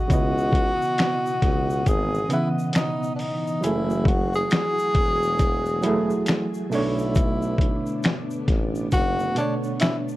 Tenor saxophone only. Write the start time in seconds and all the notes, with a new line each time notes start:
Already playing: F#4
1.89 G#4
2.33 E4
2.76 D#4
3.15 D4
3.20 D#4
3.63 E4
4.08 F#4
4.35 G#4
6.74 E4
8.93 F#4
9.38 D4
9.80 E4